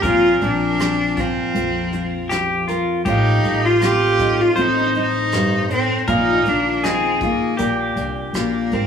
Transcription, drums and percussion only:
0.03 kick, closed hi-hat
0.41 closed hi-hat
0.79 cross-stick, closed hi-hat
1.17 kick, closed hi-hat
1.55 closed hi-hat
1.93 closed hi-hat
2.30 cross-stick, closed hi-hat
2.68 closed hi-hat
3.05 kick, closed hi-hat
3.44 closed hi-hat
3.81 cross-stick, closed hi-hat
4.19 kick, closed hi-hat
4.56 closed hi-hat
4.95 closed hi-hat
5.32 cross-stick, closed hi-hat
5.70 closed hi-hat
6.08 kick, closed hi-hat
6.45 closed hi-hat
6.84 cross-stick, closed hi-hat
7.21 kick, closed hi-hat
7.58 closed hi-hat
7.97 closed hi-hat
8.34 cross-stick, closed hi-hat
8.71 closed hi-hat

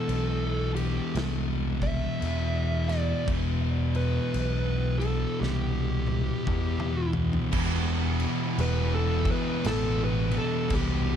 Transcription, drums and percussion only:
0.09 crash
0.76 crash
1.15 snare, crash
1.82 kick, crash
2.22 crash
2.89 snare, crash
3.28 kick, crash
3.95 crash
4.34 crash
5.01 crash
5.43 snare
6.07 high tom
6.47 kick, mid tom
6.80 mid tom
7.13 floor tom
7.33 floor tom
7.53 kick, crash
8.20 crash
8.58 crash
9.25 kick, crash
9.64 snare, crash
10.31 crash
10.70 kick, crash

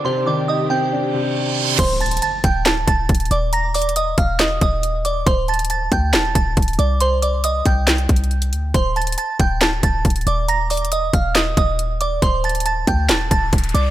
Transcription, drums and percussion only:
1.79 kick, closed hi-hat, crash
2.01 closed hi-hat
2.06 closed hi-hat
2.11 closed hi-hat
2.17 closed hi-hat
2.22 closed hi-hat
2.44 kick, closed hi-hat
2.66 snare, clap, closed hi-hat
2.88 kick, closed hi-hat
3.09 kick, closed hi-hat
3.15 closed hi-hat
3.20 closed hi-hat
3.25 closed hi-hat
3.31 closed hi-hat
3.53 closed hi-hat
3.74 closed hi-hat, open hi-hat
3.82 closed hi-hat
3.89 closed hi-hat
3.96 closed hi-hat
4.18 kick, closed hi-hat
4.39 snare, clap, closed hi-hat
4.61 kick, closed hi-hat
4.83 closed hi-hat
5.05 closed hi-hat
5.27 kick, closed hi-hat
5.48 closed hi-hat
5.54 closed hi-hat
5.59 closed hi-hat
5.65 closed hi-hat
5.70 closed hi-hat
5.92 kick, closed hi-hat
6.13 snare, clap, closed hi-hat
6.35 kick, closed hi-hat
6.57 kick, closed hi-hat
6.62 closed hi-hat
6.68 closed hi-hat
6.73 closed hi-hat
6.79 closed hi-hat
7.00 closed hi-hat
7.22 closed hi-hat
7.44 closed hi-hat
7.66 kick, closed hi-hat
7.87 snare, clap, closed hi-hat
7.98 closed hi-hat
8.09 kick, closed hi-hat
8.16 closed hi-hat
8.24 closed hi-hat
8.31 closed hi-hat
8.42 closed hi-hat
8.53 closed hi-hat
8.74 kick, closed hi-hat
8.96 closed hi-hat
9.02 closed hi-hat
9.07 closed hi-hat
9.12 closed hi-hat
9.18 closed hi-hat
9.40 kick, closed hi-hat
9.61 snare, clap, closed hi-hat
9.83 kick, closed hi-hat
10.05 kick, closed hi-hat
10.10 closed hi-hat
10.16 closed hi-hat
10.21 closed hi-hat
10.27 closed hi-hat
10.48 closed hi-hat
10.70 closed hi-hat, open hi-hat
10.77 closed hi-hat
10.85 closed hi-hat
10.92 closed hi-hat
11.13 kick, closed hi-hat
11.35 snare, clap, closed hi-hat
11.57 kick, closed hi-hat
11.79 closed hi-hat
12.01 closed hi-hat
12.22 kick, closed hi-hat
12.44 closed hi-hat
12.49 closed hi-hat
12.55 closed hi-hat
12.60 closed hi-hat
12.66 closed hi-hat
12.87 kick, closed hi-hat
13.09 snare, clap, closed hi-hat
13.31 kick, closed hi-hat
13.53 kick, closed hi-hat
13.58 closed hi-hat
13.64 closed hi-hat
13.69 closed hi-hat
13.75 closed hi-hat

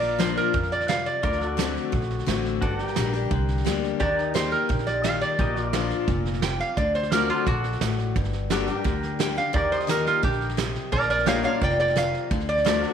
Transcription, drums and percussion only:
0.03 snare
0.20 snare, hi-hat pedal
0.37 snare
0.54 kick, snare
0.63 snare
0.72 snare
0.80 snare
0.89 snare, hi-hat pedal
1.07 snare
1.24 kick, snare
1.33 snare
1.41 snare
1.59 snare, hi-hat pedal
1.76 snare
1.93 kick, snare
2.02 snare
2.10 snare
2.19 snare
2.28 snare, hi-hat pedal
2.45 snare
2.62 kick, snare
2.79 snare
2.88 snare
2.96 snare, hi-hat pedal
3.13 snare
3.31 kick, snare
3.48 snare
3.58 snare
3.66 snare, hi-hat pedal
3.84 snare
4.01 kick, snare
4.19 snare
4.35 snare, hi-hat pedal
4.53 snare
4.70 kick, snare
4.79 snare
4.87 snare
5.04 snare, hi-hat pedal
5.22 snare
5.39 kick, snare
5.56 snare
5.73 snare, hi-hat pedal
5.90 snare
6.08 kick, snare
6.25 snare
6.34 snare
6.42 snare, hi-hat pedal
6.60 snare
6.77 kick, snare
6.95 snare
7.03 snare
7.12 snare, hi-hat pedal
7.29 snare
7.47 kick, snare
7.64 snare
7.73 snare
7.81 snare, hi-hat pedal
7.98 snare
8.15 kick, snare
8.24 snare
8.33 snare
8.50 snare, hi-hat pedal
8.68 snare
8.85 kick, snare
9.03 snare
9.20 snare, hi-hat pedal
9.37 snare
9.54 kick, snare
9.72 snare
9.80 snare
9.89 snare, hi-hat pedal
10.06 snare
10.23 kick, snare
10.33 snare
10.41 snare
10.49 snare
10.58 snare, hi-hat pedal
10.75 snare
10.92 kick, snare
11.01 snare
11.10 snare
11.18 snare
11.27 snare, hi-hat pedal
11.44 snare
11.62 kick, snare
11.70 snare
11.79 snare
11.88 snare
11.96 snare, hi-hat pedal
12.14 snare
12.31 kick, snare
12.40 snare
12.49 snare
12.57 snare
12.66 snare, hi-hat pedal
12.83 snare

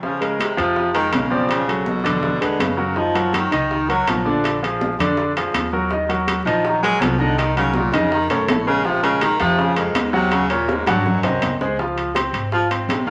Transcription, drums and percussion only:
0.03 high bongo, high conga
0.21 high bongo, high conga, high timbale
0.39 high bongo, high conga, high timbale
0.58 high bongo, high conga, high timbale
0.76 high bongo, high conga
0.95 high conga, high timbale
1.13 high bongo, low bongo, high conga, high timbale, low timbale
1.31 high bongo, high conga
1.49 high bongo, high conga, high timbale
1.67 high bongo, high conga, high timbale
1.86 high bongo, high conga
2.04 high bongo, high conga, low conga, high timbale
2.23 high bongo, high conga, low conga
2.42 high conga, high timbale
2.60 high bongo, low bongo, high conga, high timbale, low timbale
2.78 high bongo, high conga
2.96 high bongo, high conga
3.14 high bongo, high conga, high timbale
3.33 high bongo, high conga, high timbale
3.52 high bongo, high conga, high timbale
3.71 high bongo, high conga
3.89 high conga, high timbale
4.07 high bongo, low bongo, high conga, high timbale
4.26 high bongo, high conga
4.44 high bongo, high conga, high timbale
4.62 high bongo, high conga, high timbale
4.81 high bongo, high conga
4.99 high bongo, high conga, low conga, high timbale
5.17 high bongo, high conga
5.36 high conga, high timbale
5.54 high bongo, low bongo, high conga, high timbale
5.72 high bongo, high conga
5.90 high bongo, high conga
6.09 high bongo, high conga, high timbale
6.28 high bongo, high conga, high timbale
6.46 high bongo, high conga, high timbale
6.65 high bongo, high conga
6.83 high conga, high timbale
7.01 high bongo, low bongo, high conga, high timbale, low timbale
7.19 high bongo, high conga
7.38 high bongo, high timbale
7.56 high bongo, high conga, high timbale
7.74 high bongo, high conga
7.93 high bongo, high conga, low conga, high timbale
8.12 high bongo, high conga
8.30 high timbale
8.48 high bongo, low bongo, high conga, high timbale, low timbale
8.67 high bongo, high conga
8.85 high bongo
9.03 high bongo, high conga, high timbale
9.21 high bongo, high conga, high timbale
9.40 high bongo, high conga, high timbale
9.58 high bongo, high conga
9.76 high conga, high timbale
9.95 high bongo, low bongo, high conga, high timbale
10.13 high bongo, high conga
10.31 high bongo, high conga, high timbale
10.50 high bongo, high conga, high timbale
10.68 high bongo, high conga
10.86 high bongo, high conga, low conga, high timbale
11.06 low bongo, high conga, low conga
11.23 low bongo, high conga, high timbale
11.42 low bongo, high conga, high timbale
11.61 low bongo
11.79 high bongo, high conga
11.97 high bongo, high conga, high timbale
12.15 high bongo, high conga, high timbale
12.34 high bongo, high conga, high timbale
12.52 high bongo, high conga
12.70 high conga, high timbale
12.89 high bongo, low bongo, high conga, high timbale, low timbale
13.06 high conga

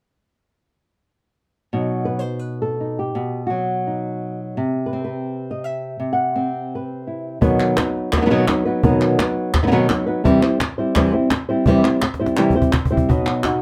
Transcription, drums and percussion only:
7.42 cajon bass
7.60 cajon slap, clap
7.77 cajon slap, clap
7.96 cajon slap
8.12 cajon bass, cajon slap, clap
8.48 cajon slap, clap
8.83 cajon bass
9.01 cajon slap, clap
9.19 cajon slap, clap
9.54 cajon bass, cajon slap, clap
9.89 cajon slap, clap
10.25 cajon bass
10.43 cajon slap, clap
10.60 cajon slap, clap
10.95 cajon bass, cajon slap, clap
11.31 cajon slap, clap
11.66 cajon bass
11.84 cajon slap, clap
12.02 cajon slap, clap
12.14 cajon slap
12.26 cajon slap
12.37 clap
12.50 cajon bass
12.62 cajon bass
12.73 cajon bass, clap
12.85 cajon bass
12.97 cajon bass
13.10 cajon bass
13.26 clap
13.44 cajon slap, clap

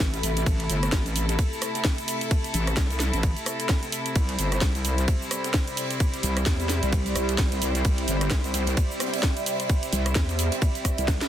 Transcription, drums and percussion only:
0.00 kick, snare, closed hi-hat, ride, cabasa
0.13 snare, closed hi-hat, cabasa
0.23 closed hi-hat, open hi-hat, cabasa
0.37 closed hi-hat, cabasa
0.46 kick, closed hi-hat, ride, cabasa
0.60 closed hi-hat
0.70 closed hi-hat, open hi-hat, cabasa
0.83 cross-stick, closed hi-hat, cabasa
0.92 kick, snare, closed hi-hat, ride, cabasa
1.06 closed hi-hat, cabasa
1.16 closed hi-hat, open hi-hat, cabasa
1.29 closed hi-hat, cabasa
1.39 kick, closed hi-hat, ride, cabasa
1.53 cabasa
1.61 cross-stick, closed hi-hat, open hi-hat, cabasa
1.74 snare, closed hi-hat, cabasa
1.85 kick, snare, closed hi-hat, ride, cabasa
1.98 closed hi-hat, cabasa
2.08 open hi-hat, cabasa
2.21 closed hi-hat, cabasa
2.31 kick, closed hi-hat, ride, cabasa
2.44 closed hi-hat, cabasa
2.54 closed hi-hat, open hi-hat, cabasa
2.67 cross-stick, closed hi-hat, cabasa
2.77 kick, snare, closed hi-hat, ride, cabasa
2.90 closed hi-hat, cabasa
3.00 snare, closed hi-hat, open hi-hat, cabasa
3.13 snare, closed hi-hat, cabasa
3.23 kick, closed hi-hat, ride, cabasa
3.37 closed hi-hat, cabasa
3.46 cross-stick, closed hi-hat, open hi-hat, cabasa
3.60 closed hi-hat, cabasa
3.69 kick, snare, closed hi-hat, ride, cabasa
3.83 snare, closed hi-hat, cabasa
3.92 closed hi-hat, open hi-hat, cabasa
4.06 closed hi-hat, cabasa
4.15 kick, closed hi-hat, ride, cabasa
4.29 closed hi-hat
4.39 closed hi-hat, open hi-hat, cabasa
4.52 cross-stick, closed hi-hat, cabasa
4.61 kick, snare, closed hi-hat, ride, cabasa
4.75 closed hi-hat, cabasa
4.84 closed hi-hat, open hi-hat, cabasa
4.98 closed hi-hat, cabasa
5.08 kick, closed hi-hat, ride, cabasa
5.22 cabasa
5.31 cross-stick, closed hi-hat, open hi-hat, cabasa
5.44 snare, closed hi-hat, cabasa
5.54 kick, snare, closed hi-hat, ride, cabasa
5.67 closed hi-hat, cabasa
5.77 open hi-hat, cabasa
5.91 closed hi-hat, cabasa
6.00 kick, ride, cabasa
6.14 closed hi-hat, cabasa
6.23 closed hi-hat, open hi-hat, cabasa
6.37 cross-stick, closed hi-hat, cabasa
6.46 kick, snare, closed hi-hat, ride, cabasa
6.60 closed hi-hat, cabasa
6.69 snare, closed hi-hat, open hi-hat, cabasa
6.83 snare, closed hi-hat, cabasa
6.92 kick, closed hi-hat, ride, cabasa
7.06 closed hi-hat, cabasa
7.15 cross-stick, closed hi-hat, open hi-hat, cabasa
7.29 closed hi-hat, cabasa
7.38 kick, snare, closed hi-hat, ride, cabasa
7.51 snare, closed hi-hat, cabasa
7.62 closed hi-hat, open hi-hat, cabasa
7.75 closed hi-hat, cabasa
7.85 kick, closed hi-hat, ride, cabasa
7.98 closed hi-hat
8.08 closed hi-hat, open hi-hat, cabasa
8.21 cross-stick, closed hi-hat, cabasa
8.30 kick, snare, closed hi-hat, ride, cabasa
8.44 closed hi-hat, cabasa
8.54 snare, closed hi-hat, open hi-hat, cabasa
8.67 snare, closed hi-hat, cabasa
8.77 kick, closed hi-hat, ride, cabasa
8.91 cabasa
9.00 cross-stick, snare, closed hi-hat, open hi-hat, cabasa
9.06 snare, closed hi-hat
9.13 snare, closed hi-hat, cabasa
9.18 snare, closed hi-hat
9.23 kick, snare, ride, cabasa
9.37 closed hi-hat, cabasa
9.46 open hi-hat, cabasa
9.60 closed hi-hat, cabasa
9.69 kick, closed hi-hat, ride, cabasa
9.83 closed hi-hat, cabasa
9.93 closed hi-hat, open hi-hat, cabasa
10.06 cross-stick, closed hi-hat, cabasa
10.15 kick, snare, closed hi-hat, ride, cabasa
10.29 closed hi-hat, cabasa
10.39 closed hi-hat, open hi-hat, cabasa
10.52 snare, closed hi-hat, cabasa
10.62 kick, ride, cabasa
10.75 closed hi-hat, cabasa
10.85 kick, cross-stick, closed hi-hat, open hi-hat, cabasa
10.98 closed hi-hat, cabasa
11.08 kick, snare, closed hi-hat, ride, cabasa
11.21 snare, closed hi-hat, cabasa

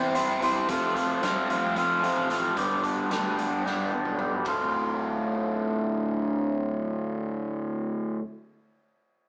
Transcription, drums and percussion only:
0.15 closed hi-hat
0.42 closed hi-hat
0.69 kick, closed hi-hat
0.96 kick, closed hi-hat
1.23 snare, closed hi-hat
1.50 closed hi-hat
1.76 kick, closed hi-hat
2.04 closed hi-hat
2.30 closed hi-hat
2.57 kick, closed hi-hat
2.84 kick, closed hi-hat
3.11 snare, closed hi-hat
3.39 closed hi-hat
3.66 snare
3.92 high tom
4.05 mid tom
4.19 mid tom
4.45 kick, ride

